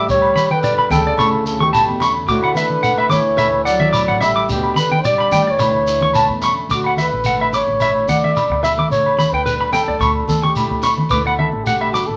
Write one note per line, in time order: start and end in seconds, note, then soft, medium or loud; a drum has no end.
0.08 0.33 D2 medium
0.08 0.54 G3 medium
0.08 1.16 G4 medium
0.08 0.53 C#5 loud
0.08 muted nylon-string guitar stroke medium
0.08 shekere medium
0.22 low agogo medium
0.35 1.17 B4 medium
0.35 0.44 B5 medium
0.35 high conga medium
0.35 shekere medium
0.50 0.92 D3 medium
0.50 0.91 B4 medium
0.50 0.58 G5 medium
0.50 high conga medium
0.63 1.18 G3 medium
0.63 0.72 D5 medium
0.63 shekere medium
0.78 0.86 B5 medium
0.78 low agogo medium
0.90 1.16 D2 medium
0.90 1.17 D4 medium
0.90 1.43 A4 medium
0.90 1.00 G5 medium
0.90 high conga medium
0.90 low conga medium
0.90 shekere medium
0.95 1.44 C#3 medium
1.07 1.14 D5 medium
1.18 1.84 D2 medium
1.18 2.28 D3 medium
1.18 1.73 A3 medium
1.18 2.01 C#4 medium
1.18 1.45 E4 medium
1.18 1.27 C#6 medium
1.18 low agogo medium
1.18 shekere medium
1.46 1.65 C#3 medium
1.46 2.30 E4 medium
1.46 1.64 A4 medium
1.46 shekere medium
1.60 2.03 B2 medium
1.60 2.02 G4 medium
1.60 1.68 C#6 medium
1.60 high conga medium
1.73 2.26 A3 medium
1.73 1.82 A5 medium
1.73 low agogo medium
1.73 shekere medium
1.88 2.25 E2 medium
2.00 2.26 C#4 medium
2.00 2.10 C#6 medium
2.00 low conga medium
2.00 low agogo medium
2.00 shekere medium
2.28 2.53 D2 medium
2.28 2.60 A2 medium
2.28 4.49 D3 medium
2.28 2.83 A3 medium
2.28 3.12 E4 medium
2.28 2.56 F#4 medium
2.28 2.37 D6 medium
2.28 shekere medium
2.43 2.51 F#5 medium
2.43 low agogo medium
2.54 3.39 A4 medium
2.54 3.12 B4 medium
2.54 2.65 E5 medium
2.54 high conga medium
2.54 shekere medium
2.59 3.15 D3 medium
2.70 high conga medium
2.83 3.94 A3 medium
2.83 2.92 F#5 medium
2.83 shekere medium
2.98 3.06 E5 medium
2.98 low agogo medium
3.09 4.05 D2 medium
3.09 4.20 E4 medium
3.09 3.64 C#5 medium
3.09 3.19 D6 medium
3.09 high conga medium
3.09 low conga medium
3.09 shekere medium
3.14 3.68 E3 medium
3.38 4.49 A2 medium
3.38 4.50 A4 medium
3.38 3.47 E5 medium
3.38 low agogo medium
3.38 shekere medium
3.64 4.24 D5 medium
3.64 3.74 F#5 medium
3.64 shekere medium
3.70 4.26 F#3 medium
3.80 3.88 E5 medium
3.80 high conga medium
3.93 4.02 D6 medium
3.93 muted nylon-string guitar stroke medium
3.93 low agogo medium
3.93 shekere medium
4.08 4.45 A1 medium
4.08 4.16 F#5 medium
4.21 4.30 E5 medium
4.21 4.50 E5 medium
4.21 muted nylon-string guitar stroke medium
4.21 low conga medium
4.21 low agogo medium
4.21 shekere medium
4.25 4.51 G3 medium
4.36 4.49 F#4 soft
4.36 4.43 D6 medium
4.49 4.74 D2 medium
4.49 5.59 D3 medium
4.49 5.31 D4 medium
4.49 4.76 G4 medium
4.49 shekere medium
4.54 4.77 B2 medium
4.63 low agogo medium
4.75 5.57 G4 medium
4.75 5.08 B4 medium
4.75 4.85 B5 medium
4.75 high conga medium
4.75 shekere medium
4.80 5.09 D3 medium
4.91 4.99 G5 medium
4.91 high conga medium
5.04 5.60 G3 medium
5.04 5.53 G3 medium
5.04 5.13 D5 medium
5.04 5.52 D5 medium
5.04 shekere medium
5.18 5.28 B5 medium
5.18 low agogo medium
5.31 5.57 D2 medium
5.31 5.57 D4 medium
5.31 5.41 G5 medium
5.31 high conga medium
5.31 low conga medium
5.31 shekere medium
5.47 6.44 E3 medium
5.47 6.44 C#5 medium
5.47 5.55 D5 medium
5.59 6.25 D2 medium
5.59 6.69 D3 medium
5.59 5.87 E4 medium
5.59 muted clean electric guitar stroke medium
5.59 low agogo medium
5.59 shekere medium
5.87 8.09 E4 medium
5.87 shekere medium
6.01 6.10 C#6 medium
6.01 high conga medium
6.14 6.66 A3 medium
6.14 6.24 A5 medium
6.14 low agogo medium
6.14 shekere medium
6.29 6.66 E2 medium
6.42 6.67 C#4 medium
6.42 6.52 C#6 medium
6.42 low conga medium
6.42 low agogo medium
6.42 shekere medium
6.69 7.08 D2 medium
6.69 8.90 D3 medium
6.69 6.79 D6 medium
6.69 shekere medium
6.74 6.98 F#4 medium
6.84 6.93 F#5 medium
6.84 low agogo medium
6.97 7.07 E5 medium
6.97 high conga medium
6.97 shekere medium
7.01 7.56 B4 medium
7.12 7.63 A1 medium
7.24 8.36 A3 medium
7.24 8.36 A4 medium
7.24 7.34 F#5 medium
7.24 shekere medium
7.40 7.48 E5 medium
7.40 low agogo medium
7.53 8.10 C#5 medium
7.53 7.62 D6 medium
7.53 low conga medium
7.53 shekere medium
7.67 8.04 A1 medium
7.80 8.91 A2 medium
7.80 7.90 E5 medium
7.80 low agogo medium
7.80 shekere medium
8.08 8.46 D2 medium
8.08 8.64 F#4 medium
8.08 8.62 D5 medium
8.08 8.17 F#5 medium
8.08 high conga medium
8.08 shekere medium
8.24 8.31 E5 medium
8.24 high conga medium
8.36 8.89 A3 medium
8.36 8.92 A4 medium
8.36 muted clean electric guitar stroke medium
8.36 low agogo medium
8.36 shekere medium
8.49 8.86 D2 medium
8.49 muted clean electric guitar stroke medium
8.63 8.89 F#4 medium
8.63 8.88 E5 medium
8.63 8.72 E5 medium
8.63 low conga medium
8.63 low agogo medium
8.63 shekere medium
8.78 8.86 D6 medium
8.78 high conga medium
8.90 9.29 D2 medium
8.90 10.01 D3 medium
8.90 9.34 C#5 medium
8.90 shekere medium
9.06 low agogo medium
9.18 9.27 B5 medium
9.18 high conga medium
9.18 shekere medium
9.32 9.83 D2 medium
9.32 9.71 B4 medium
9.32 9.41 G5 medium
9.46 10.01 G3 medium
9.46 9.54 B4 medium
9.46 muted nylon-string guitar stroke medium
9.46 shekere medium
9.61 9.68 B5 medium
9.61 low agogo medium
9.72 10.24 A4 medium
9.72 9.82 G5 medium
9.72 low conga medium
9.72 shekere medium
9.87 9.99 D2 medium
9.87 9.95 D5 medium
10.00 10.25 D2 medium
10.00 11.11 D3 medium
10.00 10.09 C#6 medium
10.00 low agogo medium
10.00 shekere medium
10.28 10.66 D2 medium
10.28 10.45 A4 medium
10.28 high conga medium
10.28 shekere medium
10.43 10.84 G4 medium
10.43 10.51 C#6 medium
10.43 high conga medium
10.56 11.09 A3 medium
10.56 11.12 E4 soft
10.56 low agogo medium
10.56 shekere medium
10.70 11.07 D2 medium
10.83 10.92 C#6 medium
10.83 low conga medium
10.83 low agogo medium
10.83 shekere medium
10.98 high conga medium
11.10 11.49 D2 medium
11.10 12.17 D3 medium
11.10 11.66 A3 medium
11.10 12.17 E4 medium
11.10 11.66 F#4 medium
11.10 11.22 B4 medium
11.10 11.20 D6 medium
11.10 shekere medium
11.15 12.17 A4 medium
11.27 11.34 F#5 medium
11.27 low agogo medium
11.39 11.65 A4 medium
11.39 11.47 E5 medium
11.39 high conga medium
11.52 12.04 A1 medium
11.64 12.17 A3 medium
11.64 12.17 F#4 medium
11.64 11.94 G4 medium
11.64 11.75 F#5 medium
11.64 shekere medium
11.81 11.88 E5 medium
11.81 low agogo medium
11.93 12.08 F#4 medium
11.93 12.03 D6 medium
11.93 low conga medium
11.93 shekere medium
12.07 12.17 A1 medium
12.07 12.17 A4 medium